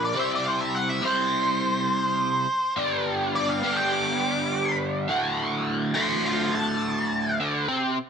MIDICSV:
0, 0, Header, 1, 3, 480
1, 0, Start_track
1, 0, Tempo, 579710
1, 367, Time_signature, 4, 2, 24, 8
1, 6704, End_track
2, 0, Start_track
2, 0, Title_t, "Lead electric guitar"
2, 0, Program_c, 0, 29
2, 37, Note_on_c, 0, 74, 100
2, 139, Note_off_c, 0, 74, 0
2, 160, Note_on_c, 0, 76, 89
2, 260, Note_off_c, 0, 76, 0
2, 292, Note_on_c, 0, 74, 86
2, 395, Note_off_c, 0, 74, 0
2, 395, Note_on_c, 0, 72, 95
2, 498, Note_off_c, 0, 72, 0
2, 501, Note_on_c, 0, 76, 101
2, 620, Note_off_c, 0, 76, 0
2, 620, Note_on_c, 0, 78, 77
2, 740, Note_off_c, 0, 78, 0
2, 740, Note_on_c, 0, 76, 90
2, 850, Note_off_c, 0, 76, 0
2, 874, Note_on_c, 0, 72, 99
2, 2267, Note_off_c, 0, 72, 0
2, 2777, Note_on_c, 0, 74, 90
2, 2888, Note_off_c, 0, 74, 0
2, 2889, Note_on_c, 0, 77, 94
2, 3119, Note_off_c, 0, 77, 0
2, 3122, Note_on_c, 0, 79, 105
2, 3240, Note_off_c, 0, 79, 0
2, 3246, Note_on_c, 0, 86, 104
2, 3471, Note_off_c, 0, 86, 0
2, 3481, Note_on_c, 0, 86, 102
2, 3949, Note_off_c, 0, 86, 0
2, 4920, Note_on_c, 0, 81, 93
2, 4927, Note_on_c, 0, 84, 104
2, 5160, Note_off_c, 0, 84, 0
2, 5163, Note_off_c, 0, 81, 0
2, 5182, Note_on_c, 0, 72, 96
2, 5183, Note_on_c, 0, 81, 85
2, 5399, Note_off_c, 0, 72, 0
2, 5407, Note_off_c, 0, 81, 0
2, 5424, Note_on_c, 0, 81, 104
2, 6114, Note_off_c, 0, 81, 0
2, 6704, End_track
3, 0, Start_track
3, 0, Title_t, "Overdriven electric guitar"
3, 0, Program_c, 1, 29
3, 0, Note_on_c, 1, 46, 65
3, 0, Note_on_c, 1, 53, 63
3, 0, Note_on_c, 1, 58, 75
3, 0, Note_on_c, 1, 62, 78
3, 0, Note_on_c, 1, 65, 74
3, 0, Note_on_c, 1, 70, 80
3, 112, Note_off_c, 1, 70, 0
3, 115, Note_off_c, 1, 65, 0
3, 116, Note_off_c, 1, 62, 0
3, 118, Note_off_c, 1, 58, 0
3, 120, Note_off_c, 1, 53, 0
3, 121, Note_off_c, 1, 46, 0
3, 124, Note_on_c, 1, 48, 86
3, 131, Note_on_c, 1, 55, 78
3, 136, Note_on_c, 1, 60, 90
3, 139, Note_on_c, 1, 64, 93
3, 142, Note_on_c, 1, 67, 94
3, 146, Note_on_c, 1, 72, 96
3, 831, Note_off_c, 1, 48, 0
3, 837, Note_off_c, 1, 60, 0
3, 838, Note_off_c, 1, 64, 0
3, 842, Note_off_c, 1, 72, 0
3, 843, Note_on_c, 1, 48, 75
3, 845, Note_off_c, 1, 55, 0
3, 848, Note_on_c, 1, 55, 76
3, 849, Note_on_c, 1, 60, 71
3, 855, Note_off_c, 1, 67, 0
3, 855, Note_on_c, 1, 64, 73
3, 858, Note_on_c, 1, 67, 76
3, 865, Note_on_c, 1, 72, 81
3, 2030, Note_off_c, 1, 48, 0
3, 2033, Note_off_c, 1, 55, 0
3, 2033, Note_off_c, 1, 60, 0
3, 2036, Note_off_c, 1, 64, 0
3, 2038, Note_off_c, 1, 67, 0
3, 2041, Note_off_c, 1, 72, 0
3, 2287, Note_on_c, 1, 43, 86
3, 2290, Note_on_c, 1, 50, 94
3, 2293, Note_on_c, 1, 55, 94
3, 2299, Note_on_c, 1, 59, 89
3, 2302, Note_on_c, 1, 62, 102
3, 2303, Note_on_c, 1, 67, 93
3, 2992, Note_off_c, 1, 43, 0
3, 2994, Note_off_c, 1, 50, 0
3, 2996, Note_off_c, 1, 55, 0
3, 2997, Note_off_c, 1, 67, 0
3, 2998, Note_off_c, 1, 59, 0
3, 3003, Note_off_c, 1, 62, 0
3, 3006, Note_on_c, 1, 62, 82
3, 3007, Note_on_c, 1, 67, 84
3, 3014, Note_on_c, 1, 59, 80
3, 3016, Note_on_c, 1, 55, 80
3, 3019, Note_on_c, 1, 50, 78
3, 3026, Note_on_c, 1, 43, 72
3, 4192, Note_off_c, 1, 67, 0
3, 4196, Note_off_c, 1, 59, 0
3, 4197, Note_off_c, 1, 55, 0
3, 4198, Note_off_c, 1, 50, 0
3, 4202, Note_off_c, 1, 43, 0
3, 4206, Note_on_c, 1, 38, 87
3, 4208, Note_on_c, 1, 45, 88
3, 4215, Note_on_c, 1, 50, 98
3, 4218, Note_on_c, 1, 57, 103
3, 4227, Note_on_c, 1, 66, 100
3, 4912, Note_off_c, 1, 38, 0
3, 4913, Note_off_c, 1, 45, 0
3, 4915, Note_off_c, 1, 66, 0
3, 4917, Note_off_c, 1, 50, 0
3, 4918, Note_off_c, 1, 57, 0
3, 4925, Note_on_c, 1, 66, 88
3, 4932, Note_on_c, 1, 57, 89
3, 4933, Note_on_c, 1, 50, 82
3, 4940, Note_on_c, 1, 45, 76
3, 4945, Note_on_c, 1, 38, 73
3, 5904, Note_off_c, 1, 62, 0
3, 6111, Note_off_c, 1, 66, 0
3, 6115, Note_off_c, 1, 50, 0
3, 6115, Note_off_c, 1, 57, 0
3, 6116, Note_off_c, 1, 38, 0
3, 6119, Note_off_c, 1, 45, 0
3, 6126, Note_on_c, 1, 38, 89
3, 6127, Note_on_c, 1, 50, 100
3, 6359, Note_off_c, 1, 38, 0
3, 6360, Note_off_c, 1, 50, 0
3, 6364, Note_on_c, 1, 48, 98
3, 6369, Note_on_c, 1, 60, 99
3, 6598, Note_off_c, 1, 48, 0
3, 6601, Note_off_c, 1, 60, 0
3, 6704, End_track
0, 0, End_of_file